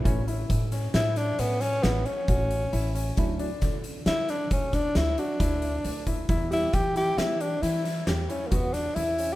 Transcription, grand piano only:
\new Staff \with { instrumentName = "Grand piano" } { \time 7/4 \key e \dorian \tempo 4 = 135 cis'8 e'4 cis'8 e'4 cis'8 cis'8 e'8 cis'8 fis'4 e'8 cis'8~ | cis'8 d'4 r8 e'4 r8 d'4 fis'8 e'4 d'8 e'8 | e'8 g'4 e'8 g'4 e'8 e'8 g'8 e'8 fis'4 e'8 cis'8 | }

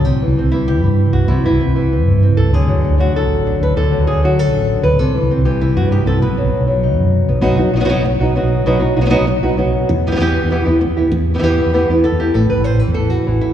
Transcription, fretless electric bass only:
\new Staff \with { instrumentName = "Fretless electric bass" } { \clef bass \time 4/4 \tempo 4 = 195 c,8. c,16 r16 c,4~ c,16 g,4 c,8 | c,8. c,16 r16 c,4~ c,16 g,4 c,8 | d,8. d,16 r16 d,4~ d,16 a,,4 d,8 | d,8. d,16 r16 d,4~ d,16 a,,4 d,8 |
c,8. c,16 r16 c,4~ c,16 g,4 c,8 | b,,8. b,,16 r16 b,,4~ b,,16 fis,4 b,,8 | b,,4 b,,8. b,,8. b,,8. b,,8. | b,,4 b,,8. b,,8. b,,8. b,,8. |
e,4 e,8. e,8. e,8. e,8. | e,4 e,8. e,8. e,8. e,8. | a,,8 a,,16 a,,4 e,4~ e,16 a,,8 r8 | }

